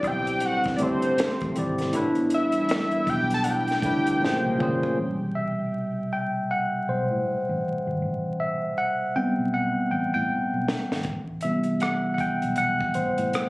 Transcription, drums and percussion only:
0, 0, Header, 1, 2, 480
1, 0, Start_track
1, 0, Tempo, 759494
1, 1222, Time_signature, 4, 2, 24, 8
1, 8526, End_track
2, 0, Start_track
2, 0, Title_t, "Drums"
2, 19, Note_on_c, 9, 36, 76
2, 24, Note_on_c, 9, 42, 61
2, 82, Note_off_c, 9, 36, 0
2, 88, Note_off_c, 9, 42, 0
2, 171, Note_on_c, 9, 42, 53
2, 235, Note_off_c, 9, 42, 0
2, 255, Note_on_c, 9, 42, 83
2, 319, Note_off_c, 9, 42, 0
2, 403, Note_on_c, 9, 42, 32
2, 415, Note_on_c, 9, 36, 77
2, 425, Note_on_c, 9, 38, 35
2, 466, Note_off_c, 9, 42, 0
2, 479, Note_off_c, 9, 36, 0
2, 488, Note_off_c, 9, 38, 0
2, 496, Note_on_c, 9, 42, 63
2, 559, Note_off_c, 9, 42, 0
2, 646, Note_on_c, 9, 42, 42
2, 709, Note_off_c, 9, 42, 0
2, 747, Note_on_c, 9, 42, 85
2, 758, Note_on_c, 9, 38, 99
2, 810, Note_off_c, 9, 42, 0
2, 821, Note_off_c, 9, 38, 0
2, 888, Note_on_c, 9, 42, 33
2, 895, Note_on_c, 9, 36, 80
2, 951, Note_off_c, 9, 42, 0
2, 958, Note_off_c, 9, 36, 0
2, 983, Note_on_c, 9, 42, 64
2, 1047, Note_off_c, 9, 42, 0
2, 1127, Note_on_c, 9, 42, 45
2, 1143, Note_on_c, 9, 38, 34
2, 1190, Note_off_c, 9, 42, 0
2, 1206, Note_off_c, 9, 38, 0
2, 1220, Note_on_c, 9, 42, 72
2, 1283, Note_off_c, 9, 42, 0
2, 1361, Note_on_c, 9, 42, 33
2, 1424, Note_off_c, 9, 42, 0
2, 1455, Note_on_c, 9, 42, 57
2, 1518, Note_off_c, 9, 42, 0
2, 1594, Note_on_c, 9, 42, 44
2, 1657, Note_off_c, 9, 42, 0
2, 1698, Note_on_c, 9, 42, 65
2, 1714, Note_on_c, 9, 38, 102
2, 1761, Note_off_c, 9, 42, 0
2, 1777, Note_off_c, 9, 38, 0
2, 1841, Note_on_c, 9, 42, 33
2, 1904, Note_off_c, 9, 42, 0
2, 1940, Note_on_c, 9, 36, 83
2, 1942, Note_on_c, 9, 42, 64
2, 2003, Note_off_c, 9, 36, 0
2, 2005, Note_off_c, 9, 42, 0
2, 2089, Note_on_c, 9, 42, 51
2, 2152, Note_off_c, 9, 42, 0
2, 2173, Note_on_c, 9, 42, 83
2, 2237, Note_off_c, 9, 42, 0
2, 2323, Note_on_c, 9, 42, 33
2, 2345, Note_on_c, 9, 38, 33
2, 2386, Note_off_c, 9, 42, 0
2, 2408, Note_off_c, 9, 38, 0
2, 2417, Note_on_c, 9, 36, 86
2, 2421, Note_on_c, 9, 42, 66
2, 2480, Note_off_c, 9, 36, 0
2, 2485, Note_off_c, 9, 42, 0
2, 2570, Note_on_c, 9, 42, 43
2, 2633, Note_off_c, 9, 42, 0
2, 2683, Note_on_c, 9, 38, 51
2, 2746, Note_off_c, 9, 38, 0
2, 2909, Note_on_c, 9, 45, 89
2, 2972, Note_off_c, 9, 45, 0
2, 3054, Note_on_c, 9, 43, 81
2, 3117, Note_off_c, 9, 43, 0
2, 6753, Note_on_c, 9, 38, 76
2, 6816, Note_off_c, 9, 38, 0
2, 6901, Note_on_c, 9, 38, 73
2, 6964, Note_off_c, 9, 38, 0
2, 6973, Note_on_c, 9, 42, 60
2, 6982, Note_on_c, 9, 36, 91
2, 7036, Note_off_c, 9, 42, 0
2, 7045, Note_off_c, 9, 36, 0
2, 7210, Note_on_c, 9, 42, 52
2, 7273, Note_off_c, 9, 42, 0
2, 7353, Note_on_c, 9, 42, 37
2, 7416, Note_off_c, 9, 42, 0
2, 7458, Note_on_c, 9, 42, 57
2, 7474, Note_on_c, 9, 37, 89
2, 7522, Note_off_c, 9, 42, 0
2, 7537, Note_off_c, 9, 37, 0
2, 7699, Note_on_c, 9, 36, 73
2, 7703, Note_on_c, 9, 42, 51
2, 7762, Note_off_c, 9, 36, 0
2, 7767, Note_off_c, 9, 42, 0
2, 7850, Note_on_c, 9, 42, 42
2, 7913, Note_off_c, 9, 42, 0
2, 7936, Note_on_c, 9, 42, 70
2, 7999, Note_off_c, 9, 42, 0
2, 8094, Note_on_c, 9, 36, 69
2, 8157, Note_off_c, 9, 36, 0
2, 8178, Note_on_c, 9, 42, 54
2, 8242, Note_off_c, 9, 42, 0
2, 8329, Note_on_c, 9, 42, 38
2, 8392, Note_off_c, 9, 42, 0
2, 8427, Note_on_c, 9, 42, 69
2, 8438, Note_on_c, 9, 37, 88
2, 8490, Note_off_c, 9, 42, 0
2, 8501, Note_off_c, 9, 37, 0
2, 8526, End_track
0, 0, End_of_file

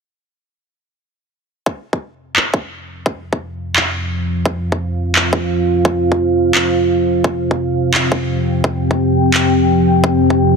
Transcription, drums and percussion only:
0, 0, Header, 1, 2, 480
1, 0, Start_track
1, 0, Tempo, 348837
1, 2292, Time_signature, 4, 2, 24, 8
1, 14536, End_track
2, 0, Start_track
2, 0, Title_t, "Drums"
2, 2289, Note_on_c, 9, 36, 116
2, 2427, Note_off_c, 9, 36, 0
2, 2656, Note_on_c, 9, 36, 56
2, 2793, Note_off_c, 9, 36, 0
2, 3252, Note_on_c, 9, 39, 106
2, 3389, Note_off_c, 9, 39, 0
2, 3490, Note_on_c, 9, 36, 88
2, 3627, Note_off_c, 9, 36, 0
2, 4210, Note_on_c, 9, 36, 114
2, 4347, Note_off_c, 9, 36, 0
2, 4576, Note_on_c, 9, 36, 57
2, 4714, Note_off_c, 9, 36, 0
2, 5175, Note_on_c, 9, 39, 118
2, 5313, Note_off_c, 9, 39, 0
2, 6130, Note_on_c, 9, 36, 116
2, 6268, Note_off_c, 9, 36, 0
2, 6497, Note_on_c, 9, 36, 56
2, 6635, Note_off_c, 9, 36, 0
2, 7094, Note_on_c, 9, 39, 111
2, 7232, Note_off_c, 9, 39, 0
2, 7331, Note_on_c, 9, 36, 97
2, 7468, Note_off_c, 9, 36, 0
2, 8050, Note_on_c, 9, 36, 119
2, 8188, Note_off_c, 9, 36, 0
2, 8416, Note_on_c, 9, 36, 53
2, 8554, Note_off_c, 9, 36, 0
2, 9011, Note_on_c, 9, 39, 115
2, 9149, Note_off_c, 9, 39, 0
2, 9967, Note_on_c, 9, 36, 113
2, 10105, Note_off_c, 9, 36, 0
2, 10334, Note_on_c, 9, 36, 53
2, 10471, Note_off_c, 9, 36, 0
2, 10928, Note_on_c, 9, 39, 113
2, 11065, Note_off_c, 9, 39, 0
2, 11169, Note_on_c, 9, 36, 92
2, 11306, Note_off_c, 9, 36, 0
2, 11890, Note_on_c, 9, 36, 107
2, 12027, Note_off_c, 9, 36, 0
2, 12257, Note_on_c, 9, 36, 52
2, 12394, Note_off_c, 9, 36, 0
2, 12852, Note_on_c, 9, 39, 104
2, 12989, Note_off_c, 9, 39, 0
2, 13811, Note_on_c, 9, 36, 109
2, 13948, Note_off_c, 9, 36, 0
2, 14177, Note_on_c, 9, 36, 51
2, 14315, Note_off_c, 9, 36, 0
2, 14536, End_track
0, 0, End_of_file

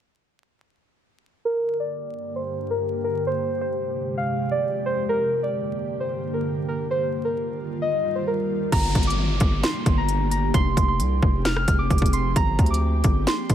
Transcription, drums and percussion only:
0, 0, Header, 1, 2, 480
1, 0, Start_track
1, 0, Tempo, 454545
1, 1533, Time_signature, 4, 2, 24, 8
1, 14308, End_track
2, 0, Start_track
2, 0, Title_t, "Drums"
2, 9213, Note_on_c, 9, 36, 114
2, 9213, Note_on_c, 9, 42, 89
2, 9213, Note_on_c, 9, 49, 108
2, 9318, Note_off_c, 9, 36, 0
2, 9318, Note_off_c, 9, 42, 0
2, 9319, Note_off_c, 9, 49, 0
2, 9453, Note_on_c, 9, 36, 99
2, 9453, Note_on_c, 9, 42, 46
2, 9534, Note_off_c, 9, 42, 0
2, 9534, Note_on_c, 9, 42, 64
2, 9559, Note_off_c, 9, 36, 0
2, 9613, Note_off_c, 9, 42, 0
2, 9613, Note_on_c, 9, 42, 83
2, 9719, Note_off_c, 9, 42, 0
2, 9928, Note_on_c, 9, 42, 74
2, 9933, Note_on_c, 9, 36, 107
2, 10033, Note_off_c, 9, 42, 0
2, 10039, Note_off_c, 9, 36, 0
2, 10174, Note_on_c, 9, 38, 119
2, 10174, Note_on_c, 9, 42, 81
2, 10279, Note_off_c, 9, 38, 0
2, 10280, Note_off_c, 9, 42, 0
2, 10413, Note_on_c, 9, 36, 100
2, 10413, Note_on_c, 9, 42, 74
2, 10519, Note_off_c, 9, 36, 0
2, 10519, Note_off_c, 9, 42, 0
2, 10651, Note_on_c, 9, 42, 75
2, 10756, Note_off_c, 9, 42, 0
2, 10893, Note_on_c, 9, 42, 86
2, 10998, Note_off_c, 9, 42, 0
2, 11133, Note_on_c, 9, 36, 119
2, 11133, Note_on_c, 9, 42, 96
2, 11238, Note_off_c, 9, 36, 0
2, 11238, Note_off_c, 9, 42, 0
2, 11373, Note_on_c, 9, 36, 100
2, 11376, Note_on_c, 9, 42, 77
2, 11479, Note_off_c, 9, 36, 0
2, 11481, Note_off_c, 9, 42, 0
2, 11613, Note_on_c, 9, 42, 96
2, 11718, Note_off_c, 9, 42, 0
2, 11853, Note_on_c, 9, 36, 107
2, 11959, Note_off_c, 9, 36, 0
2, 12092, Note_on_c, 9, 38, 123
2, 12093, Note_on_c, 9, 42, 80
2, 12198, Note_off_c, 9, 38, 0
2, 12198, Note_off_c, 9, 42, 0
2, 12212, Note_on_c, 9, 37, 97
2, 12317, Note_off_c, 9, 37, 0
2, 12332, Note_on_c, 9, 42, 81
2, 12333, Note_on_c, 9, 36, 94
2, 12437, Note_off_c, 9, 42, 0
2, 12438, Note_off_c, 9, 36, 0
2, 12571, Note_on_c, 9, 36, 90
2, 12572, Note_on_c, 9, 42, 46
2, 12652, Note_off_c, 9, 42, 0
2, 12652, Note_on_c, 9, 42, 62
2, 12677, Note_off_c, 9, 36, 0
2, 12693, Note_on_c, 9, 36, 96
2, 12732, Note_off_c, 9, 42, 0
2, 12732, Note_on_c, 9, 42, 74
2, 12798, Note_off_c, 9, 36, 0
2, 12811, Note_off_c, 9, 42, 0
2, 12811, Note_on_c, 9, 42, 76
2, 12916, Note_off_c, 9, 42, 0
2, 13052, Note_on_c, 9, 42, 93
2, 13053, Note_on_c, 9, 36, 118
2, 13158, Note_off_c, 9, 36, 0
2, 13158, Note_off_c, 9, 42, 0
2, 13292, Note_on_c, 9, 42, 48
2, 13293, Note_on_c, 9, 36, 99
2, 13372, Note_off_c, 9, 42, 0
2, 13372, Note_on_c, 9, 42, 64
2, 13398, Note_off_c, 9, 36, 0
2, 13453, Note_off_c, 9, 42, 0
2, 13453, Note_on_c, 9, 42, 82
2, 13559, Note_off_c, 9, 42, 0
2, 13767, Note_on_c, 9, 42, 75
2, 13773, Note_on_c, 9, 36, 109
2, 13872, Note_off_c, 9, 42, 0
2, 13879, Note_off_c, 9, 36, 0
2, 14013, Note_on_c, 9, 38, 122
2, 14013, Note_on_c, 9, 42, 78
2, 14118, Note_off_c, 9, 38, 0
2, 14118, Note_off_c, 9, 42, 0
2, 14251, Note_on_c, 9, 42, 75
2, 14253, Note_on_c, 9, 36, 100
2, 14308, Note_off_c, 9, 36, 0
2, 14308, Note_off_c, 9, 42, 0
2, 14308, End_track
0, 0, End_of_file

